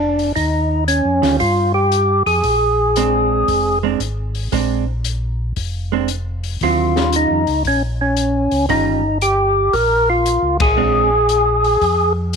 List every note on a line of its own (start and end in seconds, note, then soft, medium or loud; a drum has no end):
0.00 0.33 F1 medium
0.00 0.32 D4 medium
0.19 open hi-hat soft
0.36 1.02 D#2 medium
0.36 0.84 D#4 medium
0.36 kick soft
0.36 open hi-hat soft
0.88 1.36 C#4 medium
0.88 closed hi-hat medium
1.05 1.22 F2 medium
1.22 1.39 D2 medium
1.22 1.38 D#3 medium
1.22 1.39 G3 medium
1.22 1.39 C#4 medium
1.22 1.39 F4 medium
1.22 snare soft
1.22 open hi-hat soft
1.40 2.23 G2 medium
1.40 1.72 F4 medium
1.40 kick soft
1.40 open hi-hat soft
1.74 2.23 G4 medium
1.92 closed hi-hat medium
2.26 2.43 F2 medium
2.26 3.79 G#4 medium
2.26 open hi-hat soft
2.43 3.44 A#1 medium
2.43 kick soft
2.43 open hi-hat soft
2.96 3.76 G#3 medium
2.96 3.76 C4 medium
2.96 3.77 D4 medium
2.96 closed hi-hat soft
3.48 3.97 F1 medium
3.48 kick soft
3.48 open hi-hat soft
3.83 3.99 G#3 medium
3.83 3.99 C4 medium
3.83 3.99 D4 medium
4.00 4.48 G#1 medium
4.00 closed hi-hat soft
4.35 open hi-hat soft
4.52 5.53 A#1 medium
4.52 4.84 G#3 medium
4.52 4.84 C4 medium
4.52 4.84 D4 medium
4.52 kick soft
4.52 open hi-hat soft
5.04 closed hi-hat medium
5.56 6.57 F1 medium
5.56 kick soft
5.56 open hi-hat soft
5.92 6.07 G#3 medium
5.92 6.08 C4 medium
5.92 6.08 D4 medium
6.08 closed hi-hat medium
6.44 open hi-hat soft
6.61 7.26 D#2 medium
6.61 6.93 D3 medium
6.61 6.93 F#3 medium
6.61 6.93 C4 medium
6.61 6.93 E4 medium
6.61 7.16 F4 medium
6.61 kick soft
6.61 open hi-hat soft
6.96 7.41 D#3 medium
6.96 7.41 G3 medium
6.96 7.42 C#4 medium
6.96 7.42 F4 medium
6.96 snare soft
7.12 7.63 D#4 medium
7.12 closed hi-hat medium
7.30 7.46 F2 medium
7.47 7.64 C#2 medium
7.47 open hi-hat soft
7.65 8.48 A#1 medium
7.65 7.82 C#4 medium
7.65 kick soft
7.65 open hi-hat soft
8.01 8.66 C#4 medium
8.17 closed hi-hat soft
8.51 8.68 C#2 medium
8.51 open hi-hat soft
8.69 9.69 G1 medium
8.69 9.00 D#3 medium
8.69 9.01 G3 medium
8.69 9.01 C#4 medium
8.69 9.18 D#4 medium
8.69 9.01 F4 medium
8.69 kick soft
8.69 open hi-hat soft
9.21 9.75 G4 loud
9.21 closed hi-hat medium
9.73 10.39 A#1 medium
9.73 10.09 A#4 medium
9.73 kick soft
9.73 open hi-hat soft
10.10 10.57 F4 loud
10.26 closed hi-hat medium
10.42 10.59 C#2 medium
10.59 10.76 A1 medium
10.59 12.13 G#4 loud
10.59 kick medium
10.59 ride medium
10.77 11.77 A#1 loud
10.77 11.08 G#3 medium
10.77 11.09 C4 medium
10.77 11.09 D4 medium
11.29 closed hi-hat medium
11.64 open hi-hat soft
11.81 12.36 F2 medium
11.81 kick soft
11.81 open hi-hat soft